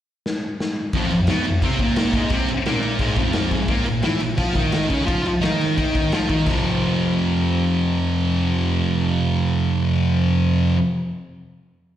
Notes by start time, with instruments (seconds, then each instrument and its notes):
0.26 snare
0.60 snare
0.93 distorted electric guitar F2 F3, kick, crash
1.11 distorted electric guitar F2, crash
1.27 distorted electric guitar B2 B3, snare, crash
1.45 distorted electric guitar F2, crash
1.62 distorted electric guitar C3 C4, kick, crash
1.79 distorted electric guitar A#2 A#3, kick, crash
1.96 snare, crash
2.13 distorted electric guitar G#2 G#3, kick, crash
2.30 distorted electric guitar C3 C4, kick, crash
2.48 muted distorted electric guitar stroke, crash
2.66 distorted electric guitar A#2 A#3, snare, crash
2.83 crash
2.99 distorted electric guitar G#2 G#3, kick, crash
3.16 distorted electric guitar F2 F3, kick, crash
3.33 snare, crash
3.51 distorted electric guitar G#2 G#3, kick, crash
3.60 snare
3.68 distorted electric guitar A#2 A#3, kick, crash
3.85 distorted electric guitar A#2, crash
4.02 distorted electric guitar E3 E4, snare, crash
4.20 distorted electric guitar A#2, crash
4.37 distorted electric guitar F3 F4, kick, crash
4.55 distorted electric guitar D#3 D#4, kick, crash
4.72 snare, crash
4.89 distorted electric guitar C#3 C#4, kick, crash
5.00 snare
5.06 distorted electric guitar F3 F4, kick, crash
5.23 muted distorted electric guitar stroke, crash
5.41 distorted electric guitar D#3 D#4, snare, crash
5.61 crash
5.77 distorted electric guitar D#3 D#4, kick, crash
5.95 kick, crash
6.12 distorted electric guitar F3 F4, snare, crash
6.29 distorted electric guitar D#3 D#4, kick, crash
6.46 distorted electric guitar F2 C3 F3, kick, crash